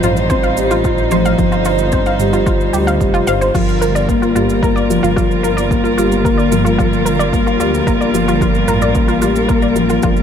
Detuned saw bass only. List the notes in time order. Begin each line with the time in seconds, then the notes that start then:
0.04 A1
1.39 G1
2.74 D2
3.01 F1
3.28 G1
3.55 G1
5.03 G1
7.60 D2
7.87 G1
8.68 A1
10.04 G1